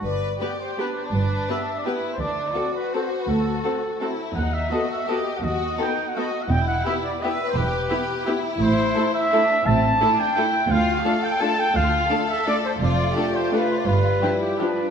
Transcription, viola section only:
\new Staff \with { instrumentName = "Viola section" } { \time 3/4 \key g \major \tempo 4 = 168 r4 <b g'>4 <b g'>4 | r4 <b g'>4 <b g'>4 | r4 <c' fis'>4 <c' fis'>4 | r4 <c' fis'>4 <c' fis'>4 |
r4 <b fis'>4 <b fis'>4 | r4 <b fis'>4 <b fis'>4 | r4 <b e'>4 <b e'>4 | r4 <b e'>4 <b e'>4 |
\key d \dorian r4 <a e'>4 <a e'>4 | r4 <a e'>4 <a e'>4 | r4 <a d'>4 <a d'>4 | r4 <a d'>4 <a d'>4 |
r4 <a d'>4 <a d'>4 | r4 <f d'>4 <f d'>4 | }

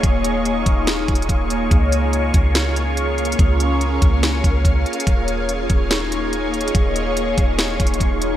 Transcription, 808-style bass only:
\new Staff \with { instrumentName = "808-style bass" } { \clef bass \time 4/4 \key ees \dorian \tempo 4 = 143 ees,,4. ees,,4 ees,,8 ees,,4 | des,4. des,2~ des,8 | des,4. des,4 des,8 des,8 r8 | ees,,4. ees,,2~ ees,,8 |
ees,,4. ees,,4 ees,,8 ees,,4 | }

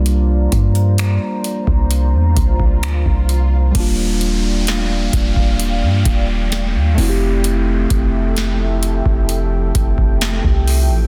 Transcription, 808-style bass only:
\new Staff \with { instrumentName = "808-style bass" } { \clef bass \time 4/4 \key f \major \tempo 4 = 65 c,8 g,8. r8 c,8 e,16 c,8 d,16 c,8. | ees,,4. ees,,8. g,16 ees,,8. ees,16 f,,8~ | f,,8 f,,4~ f,,16 f,,8. f,,8. c,8 a,,16 | }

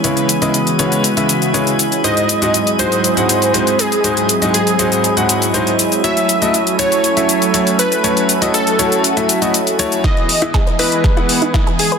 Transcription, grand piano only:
\new Staff \with { instrumentName = "Grand piano" } { \time 4/4 \key e \major \tempo 4 = 120 <cis gis e' b' cis''>8 r16 <cis gis e' b' dis''>16 r8 <cis gis e' b' cis''>8 r16 <cis gis e' b' e''>8. <cis gis e' b' cis''>16 r8. | <gis, gis dis' fis' bis'>8 r16 <gis, gis dis' fis' dis''>16 r8 <gis, gis dis' fis' bis'>8 r16 <gis, gis dis' fis' fis''>8. <gis, gis dis' fis' bis'>16 r8. | <gis, gis dis' fis' bis'>8 r16 <gis, gis dis' fis' dis''>16 r8 <gis, gis dis' fis' bis'>8 r16 <gis, gis dis' fis' fis''>8. <gis, gis dis' fis' bis'>16 r8. | <a e' fis' cis''>8 r16 <a e' fis' dis''>16 r8 <a e' fis' cis''>8 r16 <a e' fis' e''>8. <a e' fis' cis''>16 r8. |
<a e' fis' cis''>8 r16 <a e' fis' dis''>16 r8 <a e' fis' cis''>8 r16 <a e' fis' e''>8 <a e' fis' dis''>16 r8 <a e' fis' cis''>8 | <e b e' gis' dis''>8 r16 <e b e' gis' e''>16 r8 <e b e' gis' dis''>8 r16 <e b e' gis' fis''>8. <e b e' gis' dis''>16 r8. | }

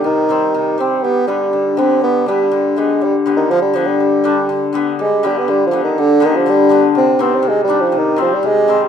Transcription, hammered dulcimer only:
\new Staff \with { instrumentName = "Hammered dulcimer" } { \clef bass \time 2/4 \tempo 4 = 122 << { r8 <ees g c'>16 r8. <ees g c'>16 r16 | r8 <d g b>16 r8. <d g b>16 r16 | r8 <d g b>16 r8. <d g b>16 r16 | r8 <d g b>16 r8. <d g b>16 r16 |
r8 <d g d'>16 r8. <d g b>16 r16 | r8 <d g b>16 r8. <d g b>16 r16 | r8 <d g b>16 r8. <d g b>16 r16 | r8 <ees g c'>16 r8. <ees g d'>16 r16 |
r8 <ees g c'>16 r8. <ees g c'>16 r16 | } \\ { c4 c4 | g4 d4 | g4 d4 | g4 d4 |
g4 d4 | g4 d4 | g4 d4 | c4 c4 |
c4 c4 | } >> }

